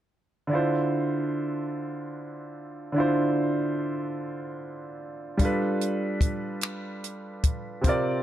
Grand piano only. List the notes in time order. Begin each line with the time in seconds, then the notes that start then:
0.47 D3 D4 E4
0.53 F4 C5
2.92 D3 D4 E4
2.98 F4 C5
5.37 G3 D4 F4
5.43 A4 B4
7.81 C3 C4
7.86 F4 A#4 D5